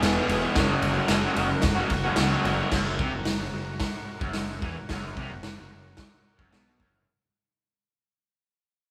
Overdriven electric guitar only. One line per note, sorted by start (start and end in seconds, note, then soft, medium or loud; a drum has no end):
0.01 0.54 E2 medium
0.01 0.54 B2 medium
0.01 0.25 E3 loud
0.01 0.27 G#3 loud
0.01 0.28 B3 loud
0.05 0.30 G#4 loud
0.27 0.44 E3 medium
0.27 0.42 G#3 medium
0.27 0.41 B3 medium
0.31 0.39 G#4 medium
0.40 0.55 G#3 medium
0.40 0.54 B3 medium
0.40 0.53 G#4 medium
0.45 0.55 E3 medium
0.54 1.05 F#2 loud
0.54 1.06 C#3 loud
0.54 0.97 F#3 loud
0.54 0.95 A#3 loud
0.54 0.94 C#4 loud
0.58 0.92 F#4 loud
0.93 1.08 A#3 medium
0.93 1.09 C#4 medium
0.93 1.09 F#4 medium
0.98 1.07 F#3 medium
1.06 1.62 F#2 medium
1.06 1.63 C#3 medium
1.06 1.33 F#3 loud
1.06 1.34 A#3 loud
1.06 1.36 C#4 medium
1.10 1.37 F#4 loud
1.34 1.49 F#3 medium
1.34 1.49 A#3 medium
1.34 1.49 C#4 medium
1.39 1.48 F#4 medium
1.50 muted overdriven electric guitar stroke medium
1.75 1.90 A#3 medium
1.75 1.90 C#4 medium
1.75 1.90 F#4 medium
1.80 1.89 F#3 medium
1.91 muted overdriven electric guitar stroke soft
2.04 2.17 F#3 medium
2.04 2.17 A#3 medium
2.04 2.18 C#4 medium
2.04 2.19 F#4 medium
2.16 2.70 F#2 medium
2.16 2.71 C#3 medium
2.16 2.44 F#3 loud
2.16 2.45 A#3 loud
2.16 2.46 C#4 loud
2.16 2.47 F#4 loud
2.45 2.61 F#3 medium
2.45 2.59 A#3 medium
2.45 2.58 C#4 medium
2.45 2.57 F#4 medium
2.58 2.72 A#3 medium
2.58 2.71 C#4 medium
2.58 2.70 F#4 medium
2.62 2.72 F#3 medium
2.73 2.99 F#2 loud
3.00 3.13 C3 loud
3.13 3.35 F#2 medium
3.40 3.52 F#2 medium
3.54 3.76 F#2 medium
4.21 4.61 F#2 medium
4.63 4.76 E3 loud
4.77 muted overdriven electric guitar stroke medium
4.90 5.16 F#2 loud
5.18 5.30 C3 loud
5.31 5.53 F#2 medium
5.57 5.70 F#2 medium
5.71 5.93 F#2 medium
6.39 6.52 F#2 medium
6.51 6.78 B2 medium
6.80 7.06 F#2 loud